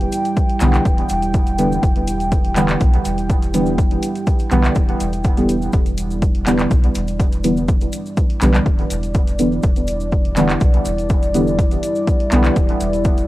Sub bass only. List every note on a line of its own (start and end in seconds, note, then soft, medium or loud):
0.61 0.79 B1 loud
0.86 1.03 D1 medium
1.10 1.78 E1 medium
1.83 2.75 E1 loud
2.81 2.98 B1 medium
3.05 3.97 E1 medium
4.51 4.69 B1 loud
4.76 4.94 D1 medium
5.00 5.68 E1 medium
5.73 6.66 E1 loud
6.71 6.89 B1 medium
6.95 7.88 E1 medium
8.41 8.59 B1 loud
8.66 8.84 D1 medium
8.90 9.58 E1 medium
9.64 10.56 E1 loud
10.61 10.79 B1 medium
10.85 11.78 E1 medium
12.32 12.50 B1 loud
12.56 12.74 D1 medium
12.81 13.27 E1 medium